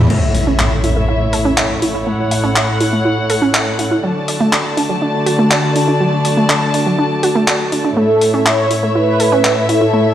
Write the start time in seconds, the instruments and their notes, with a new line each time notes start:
0.10 string section A2 A3 E4 C#5 E5, synth arpeggio sound A3, crash, impact
0.35 synth arpeggio sound E5, open hi-hat
0.47 synth arpeggio sound C#4
0.59 synth arpeggio sound E5, clap
0.84 synth arpeggio sound E4, open hi-hat
0.96 synth arpeggio sound A3
1.08 synth arpeggio sound E4
1.33 synth arpeggio sound A4, open hi-hat
1.45 synth arpeggio sound C#4
1.57 synth arpeggio sound E5, clap
1.82 synth arpeggio sound E4, open hi-hat
1.94 synth arpeggio sound E4
2.07 synth arpeggio sound A3, string section F#5
2.31 synth arpeggio sound E5, open hi-hat
2.44 synth arpeggio sound C#4
2.56 synth arpeggio sound E5, clap
2.80 synth arpeggio sound E4, open hi-hat
2.93 synth arpeggio sound A3
3.05 synth arpeggio sound E4
3.30 synth arpeggio sound A4, open hi-hat
3.42 synth arpeggio sound C#4
3.54 synth arpeggio sound E5, clap
3.79 synth arpeggio sound E4, open hi-hat
3.91 synth arpeggio sound E4
4.03 string section D3 F#4 D5 A5, synth arpeggio sound F#3
4.28 synth arpeggio sound D5, open hi-hat
4.40 synth arpeggio sound A3
4.53 synth arpeggio sound D5, clap
4.77 synth arpeggio sound D4, open hi-hat
4.89 synth arpeggio sound F#3
5.02 synth arpeggio sound D4
5.26 synth arpeggio sound F#4, open hi-hat
5.39 synth arpeggio sound A3
5.51 synth arpeggio sound D5, clap
5.76 synth arpeggio sound D4, open hi-hat
5.88 synth arpeggio sound D4
6.00 synth arpeggio sound F#3
6.25 synth arpeggio sound D5, open hi-hat
6.37 synth arpeggio sound A3
6.49 synth arpeggio sound D5, clap
6.74 synth arpeggio sound D4, open hi-hat
6.86 synth arpeggio sound F#3
6.99 synth arpeggio sound D4
7.23 synth arpeggio sound F#4, open hi-hat
7.35 synth arpeggio sound A3
7.48 synth arpeggio sound D5, clap
7.72 synth arpeggio sound D4, open hi-hat
7.85 synth arpeggio sound D4
7.97 string section A2 E4 C#5 E5, synth arpeggio sound A3, analog polysynth A4
8.21 synth arpeggio sound E5, open hi-hat
8.34 synth arpeggio sound C#4
8.46 analog polysynth C#5, synth arpeggio sound E5, clap
8.71 synth arpeggio sound E4, open hi-hat
8.83 synth arpeggio sound A3
8.95 synth arpeggio sound E4, analog polysynth B4
9.20 synth arpeggio sound A4, open hi-hat
9.32 synth arpeggio sound C#4
9.44 synth arpeggio sound E5, clap
9.69 synth arpeggio sound E4, analog polysynth A4, open hi-hat
9.81 synth arpeggio sound E4
9.93 synth arpeggio sound A3